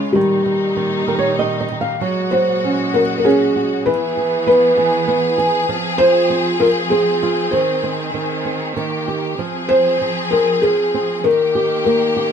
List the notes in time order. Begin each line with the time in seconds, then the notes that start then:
Already playing: C#3 G#3 F4
0.13 A#2 D#3 G3 D#4
0.46 D#3
0.76 D#3
1.08 D#3 A#4
1.19 C#5
1.39 D#3 D#5
1.60 D#5
1.72 D#3
1.81 F5
2.01 A#2 F#3 G#3 F#4
2.31 F#4 C5
2.64 C#4
2.94 F#4 A#4
3.18 A#4
3.25 C#4 G#4
3.56 F#4
3.86 E3 B3 G#4 B4
4.17 G#4
4.47 B3 B4
4.77 G#4
5.08 B3
5.38 G#4
5.69 F3 C4
5.98 F4 C5
6.30 C4
6.60 F4 A#4
6.90 C4 G#4
7.23 F4
7.51 D#3 C5
7.83 C4
8.14 D#3
8.45 C4
8.76 D#3 A#3 G4
9.08 G4
9.38 F3 C4 G#4
9.69 C4 C5
10.01 F3
10.31 C4 A#4
10.62 F3 G#4
10.94 C4
11.24 D#3 A#3 G4 A#4
11.55 G4
11.85 A#3 A#4
12.16 G4